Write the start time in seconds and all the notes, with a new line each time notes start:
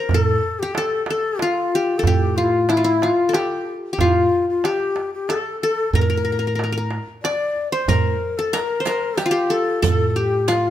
Already playing: A#4 C5
0.09 A2 A4, darbuka dum
0.14 A4
0.59 G4
0.74 A4, darbuka tek
0.90 darbuka ka
1.06 A4, darbuka tek
1.10 A4
1.23 darbuka ka
1.39 F4, darbuka tek
1.75 G4
1.97 A4
2.03 A2 G4, darbuka dum
2.36 F4
2.44 E4
2.51 F4
2.69 E4, darbuka tek
2.77 F4
2.84 E4, darbuka ka
3.02 F4, darbuka tek
3.18 darbuka ka
3.29 A4
3.33 G4, darbuka tek
3.93 G4
3.99 A2 F4, darbuka dum
4.06 E4
4.15 F4
4.50 F4
4.64 G4, darbuka tek
4.80 darbuka ka
4.96 darbuka tek
5.14 G4
5.29 A4, darbuka tek
5.61 A4
5.93 A2 A#4, darbuka dum
6.01 A#4
6.10 A#4
6.17 A#4
6.25 A#4, darbuka ka
6.32 A#4
6.39 A#4
6.47 A#4
6.55 A#4, darbuka tek
6.64 A#4
6.72 A#4, darbuka ka
6.77 A#4
6.91 darbuka tek
7.07 darbuka ka
7.23 D5, darbuka tek
7.56 darbuka ka
7.72 C5
7.88 A2 A#4, riq, darbuka dum
8.38 A4
8.53 A#4, riq, darbuka tek
8.70 darbuka ka
8.80 C5
8.85 A#4, riq, darbuka tek
9.02 darbuka ka
9.17 G4, riq, darbuka tek
9.26 F4
9.31 G4
9.50 A4, riq
9.82 A2 A4, riq, darbuka dum
10.10 A4
10.16 G4
10.48 F4, riq, darbuka tek
10.65 darbuka ka